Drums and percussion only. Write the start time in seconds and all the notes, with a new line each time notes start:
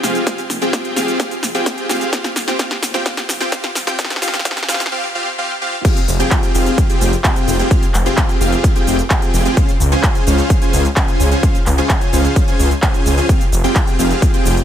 0.03 snare, open hi-hat, cabasa
0.15 closed hi-hat, cabasa
0.27 kick, snare, closed hi-hat, cabasa
0.38 closed hi-hat, cabasa
0.50 snare, open hi-hat, cabasa
0.62 closed hi-hat, cabasa
0.73 kick, snare, closed hi-hat, cabasa
0.85 closed hi-hat
0.96 snare, open hi-hat, cabasa
1.08 closed hi-hat, cabasa
1.20 kick, snare, closed hi-hat, cabasa
1.31 closed hi-hat, cabasa
1.43 snare, open hi-hat, cabasa
1.55 closed hi-hat, cabasa
1.66 kick, snare, closed hi-hat, cabasa
1.78 closed hi-hat
1.89 snare, open hi-hat, cabasa
2.01 closed hi-hat, cabasa
2.13 kick, snare, closed hi-hat, cabasa
2.24 snare, closed hi-hat, cabasa
2.36 snare, open hi-hat, cabasa
2.48 snare, closed hi-hat, cabasa
2.59 kick, snare, closed hi-hat, cabasa
2.71 snare, closed hi-hat
2.83 snare, open hi-hat, cabasa
2.94 snare, closed hi-hat, cabasa
3.06 kick, snare, closed hi-hat, cabasa
3.17 snare, closed hi-hat, cabasa
3.29 snare, open hi-hat, cabasa
3.41 snare, closed hi-hat, cabasa
3.52 kick, snare, closed hi-hat, cabasa
3.64 snare, closed hi-hat
3.75 snare, open hi-hat, cabasa
3.87 snare, closed hi-hat, cabasa
3.99 kick, snare, closed hi-hat, cabasa
4.05 snare
4.10 snare, closed hi-hat, cabasa
4.16 snare
4.22 snare, open hi-hat, cabasa
4.28 snare
4.34 snare, closed hi-hat, cabasa
4.39 snare
4.45 kick, snare, closed hi-hat, cabasa
4.51 snare
4.57 snare, closed hi-hat, cabasa
4.63 snare
4.68 snare, open hi-hat, cabasa
4.74 snare
4.80 snare, closed hi-hat, cabasa
4.86 snare
5.85 kick, closed hi-hat, crash, cabasa
5.96 closed hi-hat, cabasa
6.08 open hi-hat, cabasa
6.20 closed hi-hat, cabasa
6.31 kick, clap, closed hi-hat, cabasa
6.43 closed hi-hat, cabasa
6.55 open hi-hat, cabasa
6.66 closed hi-hat, cabasa
6.78 kick, closed hi-hat, cabasa
6.90 closed hi-hat, cabasa
7.01 open hi-hat, cabasa
7.13 closed hi-hat, cabasa
7.24 kick, clap, closed hi-hat, cabasa
7.36 closed hi-hat, cabasa
7.48 open hi-hat, cabasa
7.59 closed hi-hat, cabasa
7.71 kick, closed hi-hat, cabasa
7.83 closed hi-hat, cabasa
7.94 clap, open hi-hat, cabasa
8.06 closed hi-hat, cabasa
8.17 kick, clap, closed hi-hat, cabasa
8.29 closed hi-hat, cabasa
8.41 open hi-hat, cabasa
8.52 closed hi-hat, cabasa
8.64 kick, closed hi-hat, cabasa
8.76 closed hi-hat, cabasa
8.87 open hi-hat, cabasa
8.99 closed hi-hat, cabasa
9.10 kick, clap, closed hi-hat, cabasa
9.22 closed hi-hat, cabasa
9.34 open hi-hat, cabasa
9.45 closed hi-hat, cabasa
9.57 kick, closed hi-hat, cabasa
9.69 closed hi-hat, cabasa
9.80 open hi-hat, cabasa
9.92 closed hi-hat, cabasa
10.03 kick, clap, closed hi-hat, cabasa
10.15 closed hi-hat, cabasa
10.27 open hi-hat, cabasa
10.38 closed hi-hat, cabasa
10.50 kick, closed hi-hat, cabasa
10.62 closed hi-hat, cabasa
10.73 open hi-hat, cabasa
10.85 closed hi-hat, cabasa
10.96 kick, clap, closed hi-hat, cabasa
11.08 closed hi-hat, cabasa
11.20 open hi-hat, cabasa
11.31 closed hi-hat, cabasa
11.43 kick, closed hi-hat, cabasa
11.55 closed hi-hat, cabasa
11.66 clap, open hi-hat, cabasa
11.78 closed hi-hat, cabasa
11.89 kick, clap, closed hi-hat, cabasa
12.01 closed hi-hat, cabasa
12.13 open hi-hat, cabasa
12.25 closed hi-hat, cabasa
12.36 kick, closed hi-hat, cabasa
12.48 closed hi-hat, cabasa
12.59 open hi-hat, cabasa
12.71 closed hi-hat, cabasa
12.82 kick, clap, closed hi-hat, cabasa
12.94 closed hi-hat, cabasa
13.06 open hi-hat, cabasa
13.17 closed hi-hat, cabasa
13.29 kick, closed hi-hat, cabasa
13.41 closed hi-hat, cabasa
13.52 open hi-hat, cabasa
13.64 closed hi-hat, cabasa
13.75 kick, clap, closed hi-hat, cabasa
13.87 closed hi-hat, cabasa
13.99 open hi-hat, cabasa
14.11 closed hi-hat, cabasa
14.22 kick, closed hi-hat, cabasa
14.34 closed hi-hat, cabasa
14.45 open hi-hat, cabasa
14.57 closed hi-hat, cabasa